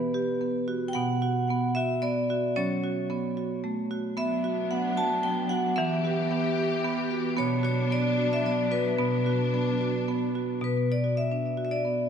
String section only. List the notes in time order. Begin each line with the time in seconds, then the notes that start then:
4.18 F#3 B3 D4
5.78 E3 B3 G4
7.38 F#3 D4
9.00 D4